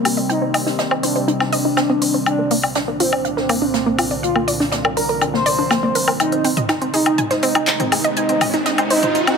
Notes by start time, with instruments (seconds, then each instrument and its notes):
Already playing: ambient pad C3 D#3 G3 C4, analog synth lead A#3
0.05 synth arpeggio sound G4, closed hi-hat, open hi-hat, low woodblock
0.17 synth arpeggio sound D#5, closed hi-hat
0.29 analog synth lead D#4, synth arpeggio sound G5, closed hi-hat
0.42 synth arpeggio sound C4
0.54 synth arpeggio sound D#5, closed hi-hat, open hi-hat, low woodblock
0.66 synth arpeggio sound D#4, snare
0.79 synth arpeggio sound D#5, snare, closed hi-hat
0.91 synth arpeggio sound C5, low woodblock
1.03 analog synth lead D4, synth arpeggio sound C5, closed hi-hat, open hi-hat
1.16 synth arpeggio sound C5, closed hi-hat
1.28 synth arpeggio sound D#4, closed hi-hat
1.40 synth arpeggio sound C4, analog synth lead D4, snare, low woodblock
1.53 synth arpeggio sound D#5, closed hi-hat, open hi-hat
1.65 synth arpeggio sound D#4
1.77 synth arpeggio sound C4, snare, closed hi-hat, low woodblock
1.90 synth arpeggio sound C4
2.02 synth arpeggio sound C5, closed hi-hat, open hi-hat
2.14 synth arpeggio sound C5
2.26 ambient pad C2 A#2 D3 F3 D4, analog synth lead D4, closed hi-hat, low woodblock
2.39 synth arpeggio sound A#3
2.50 synth arpeggio sound A#3, closed hi-hat, open hi-hat
2.62 synth arpeggio sound D5, closed hi-hat, low woodblock
2.75 synth arpeggio sound D4, snare, closed hi-hat
2.88 synth arpeggio sound A#3
3.00 analog synth lead C4, synth arpeggio sound F4, closed hi-hat, open hi-hat
3.13 synth arpeggio sound D5, low woodblock
3.25 synth arpeggio sound F5, closed hi-hat
3.37 analog synth lead C4, synth arpeggio sound A#4, snare
3.49 synth arpeggio sound A#3, closed hi-hat, open hi-hat, low woodblock
3.62 synth arpeggio sound D4
3.74 synth arpeggio sound A#3, snare, closed hi-hat
3.86 synth arpeggio sound A#3
3.98 synth arpeggio sound F4, closed hi-hat, open hi-hat, low woodblock
4.11 synth arpeggio sound D5, closed hi-hat
4.23 ambient pad C4, analog synth lead F4, synth arpeggio sound F5, closed hi-hat
4.36 synth arpeggio sound A#3, low woodblock
4.48 synth arpeggio sound D5, closed hi-hat, open hi-hat
4.60 synth arpeggio sound D4, snare
4.72 synth arpeggio sound D5, snare, closed hi-hat
4.85 synth arpeggio sound A#4, low woodblock
4.97 synth arpeggio sound A#4, analog synth lead A#4, closed hi-hat, open hi-hat
5.09 synth arpeggio sound A#4, closed hi-hat
5.21 synth arpeggio sound D4, closed hi-hat, low woodblock
5.34 synth arpeggio sound A#3, analog synth lead C5, snare
5.46 synth arpeggio sound D5, closed hi-hat, open hi-hat
5.58 synth arpeggio sound D4
5.71 synth arpeggio sound A#3, snare, closed hi-hat, low woodblock
5.83 synth arpeggio sound A#3
5.95 synth arpeggio sound A#4, closed hi-hat, open hi-hat
6.08 synth arpeggio sound A#4, low woodblock
6.20 ambient pad C3 D#3 G#3 D#4, analog synth lead D#4, closed hi-hat, riser, low woodblock
6.32 synth arpeggio sound C4, closed hi-hat
6.45 synth arpeggio sound C4, closed hi-hat, open hi-hat
6.57 synth arpeggio sound D#5, closed hi-hat, mid tom
6.69 synth arpeggio sound D#4, snare, closed hi-hat, low woodblock
6.82 synth arpeggio sound C4, closed hi-hat
6.94 analog synth lead D#4, synth arpeggio sound G#4, closed hi-hat, open hi-hat
7.06 synth arpeggio sound D#5, closed hi-hat, low woodblock
7.18 synth arpeggio sound G#5, closed hi-hat, mid tom
7.30 analog synth lead D#4, synth arpeggio sound C5, snare, closed hi-hat
7.43 synth arpeggio sound C4, closed hi-hat, open hi-hat
7.55 synth arpeggio sound D#4, closed hi-hat, low woodblock
7.66 synth arpeggio sound C4, snare, clap, closed hi-hat
7.80 synth arpeggio sound C4, closed hi-hat, mid tom
7.92 synth arpeggio sound G#4, closed hi-hat, open hi-hat, low woodblock
8.04 synth arpeggio sound D#5, closed hi-hat
8.17 analog synth lead D#4, synth arpeggio sound G#5, closed hi-hat
8.29 synth arpeggio sound C4, closed hi-hat
8.41 synth arpeggio sound D#5, closed hi-hat, mid tom, open hi-hat, low woodblock
8.54 synth arpeggio sound D#4, snare, closed hi-hat
8.66 synth arpeggio sound D#5, snare, closed hi-hat
8.78 synth arpeggio sound C5, closed hi-hat, low woodblock
8.90 analog synth lead D#4, synth arpeggio sound C5, closed hi-hat, open hi-hat
9.02 synth arpeggio sound C5, closed hi-hat, mid tom
9.15 synth arpeggio sound D#4, closed hi-hat
9.27 synth arpeggio sound C4, analog synth lead D#4, snare, closed hi-hat, low woodblock